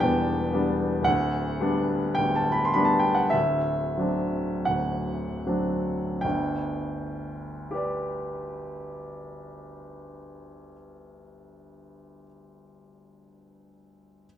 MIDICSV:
0, 0, Header, 1, 2, 480
1, 0, Start_track
1, 0, Key_signature, 1, "major"
1, 0, Tempo, 1016949
1, 501, Time_signature, 4, 2, 24, 8
1, 502, Tempo, 1104972
1, 982, Tempo, 1174168
1, 1462, Tempo, 1351351
1, 1942, Tempo, 1538462
1, 2422, Tempo, 1470588
1, 2902, Tempo, 1431981
1, 3382, Tempo, 1372998
1, 3862, Tempo, 1470588
1, 5124, End_track
2, 0, Start_track
2, 0, Title_t, "Grand piano"
2, 0, Program_c, 0, 0
2, 0, Control_c, 0, 64, 127
2, 0, Note_on_c, 0, 28, 53
2, 0, Note_on_c, 0, 40, 56
2, 0, Note_on_c, 0, 55, 37
2, 0, Note_on_c, 0, 59, 43
2, 0, Note_on_c, 0, 62, 45
2, 0, Note_on_c, 0, 81, 101
2, 1, Note_on_c, 0, 79, 63
2, 15, Note_off_c, 0, 40, 0
2, 15, Note_on_c, 0, 40, 39
2, 16, Note_off_c, 0, 28, 0
2, 16, Note_on_c, 0, 28, 43
2, 246, Note_off_c, 0, 40, 0
2, 247, Note_off_c, 0, 28, 0
2, 251, Note_off_c, 0, 55, 0
2, 251, Note_on_c, 0, 55, 36
2, 253, Note_off_c, 0, 59, 0
2, 253, Note_on_c, 0, 59, 36
2, 258, Note_off_c, 0, 62, 0
2, 258, Note_on_c, 0, 62, 36
2, 480, Note_off_c, 0, 55, 0
2, 481, Note_off_c, 0, 59, 0
2, 481, Note_on_c, 0, 26, 46
2, 483, Note_off_c, 0, 62, 0
2, 491, Note_off_c, 0, 79, 0
2, 493, Note_on_c, 0, 78, 74
2, 503, Note_on_c, 0, 38, 55
2, 511, Note_off_c, 0, 81, 0
2, 511, Control_c, 0, 64, 0
2, 593, Control_c, 0, 64, 127
2, 720, Note_off_c, 0, 26, 0
2, 730, Note_off_c, 0, 38, 0
2, 737, Note_on_c, 0, 55, 36
2, 739, Note_on_c, 0, 59, 39
2, 741, Note_on_c, 0, 62, 43
2, 964, Note_off_c, 0, 55, 0
2, 965, Note_off_c, 0, 59, 0
2, 966, Note_off_c, 0, 62, 0
2, 972, Note_on_c, 0, 79, 69
2, 977, Note_off_c, 0, 78, 0
2, 986, Note_on_c, 0, 38, 36
2, 991, Note_on_c, 0, 26, 42
2, 1058, Note_on_c, 0, 81, 52
2, 1062, Note_off_c, 0, 79, 0
2, 1125, Note_on_c, 0, 83, 56
2, 1127, Note_off_c, 0, 81, 0
2, 1178, Note_on_c, 0, 84, 59
2, 1180, Note_off_c, 0, 83, 0
2, 1211, Note_off_c, 0, 38, 0
2, 1213, Note_off_c, 0, 26, 0
2, 1214, Note_on_c, 0, 83, 64
2, 1220, Note_on_c, 0, 55, 37
2, 1222, Note_on_c, 0, 62, 42
2, 1225, Note_on_c, 0, 59, 37
2, 1226, Note_off_c, 0, 84, 0
2, 1259, Note_on_c, 0, 81, 58
2, 1268, Note_off_c, 0, 83, 0
2, 1319, Note_on_c, 0, 79, 57
2, 1321, Note_off_c, 0, 81, 0
2, 1381, Note_on_c, 0, 78, 51
2, 1387, Note_off_c, 0, 79, 0
2, 1444, Note_on_c, 0, 76, 70
2, 1447, Note_off_c, 0, 55, 0
2, 1448, Note_off_c, 0, 62, 0
2, 1449, Note_off_c, 0, 59, 0
2, 1456, Note_off_c, 0, 78, 0
2, 1458, Note_on_c, 0, 26, 42
2, 1458, Note_on_c, 0, 38, 45
2, 1468, Control_c, 0, 64, 0
2, 1544, Control_c, 0, 64, 127
2, 1684, Note_off_c, 0, 26, 0
2, 1684, Note_off_c, 0, 38, 0
2, 1686, Note_on_c, 0, 54, 29
2, 1691, Note_on_c, 0, 60, 32
2, 1692, Note_on_c, 0, 62, 32
2, 1923, Note_off_c, 0, 54, 0
2, 1926, Note_off_c, 0, 60, 0
2, 1926, Note_off_c, 0, 62, 0
2, 1927, Note_on_c, 0, 78, 60
2, 1933, Note_off_c, 0, 76, 0
2, 1939, Note_on_c, 0, 38, 33
2, 1940, Note_on_c, 0, 26, 32
2, 2172, Note_off_c, 0, 38, 0
2, 2173, Note_off_c, 0, 26, 0
2, 2181, Note_on_c, 0, 60, 29
2, 2183, Note_on_c, 0, 54, 27
2, 2184, Note_on_c, 0, 62, 29
2, 2408, Note_off_c, 0, 60, 0
2, 2409, Note_off_c, 0, 54, 0
2, 2410, Note_off_c, 0, 62, 0
2, 2415, Note_off_c, 0, 78, 0
2, 2415, Note_on_c, 0, 79, 50
2, 2425, Note_on_c, 0, 38, 39
2, 2427, Note_on_c, 0, 31, 39
2, 2428, Control_c, 0, 64, 0
2, 2518, Control_c, 0, 64, 127
2, 2904, Note_on_c, 0, 67, 31
2, 2913, Note_on_c, 0, 71, 27
2, 2919, Note_on_c, 0, 74, 31
2, 3929, Note_off_c, 0, 79, 0
2, 3938, Note_off_c, 0, 38, 0
2, 3941, Note_off_c, 0, 31, 0
2, 4417, Note_off_c, 0, 67, 0
2, 4426, Note_off_c, 0, 71, 0
2, 4432, Note_off_c, 0, 74, 0
2, 5085, Control_c, 0, 64, 0
2, 5124, End_track
0, 0, End_of_file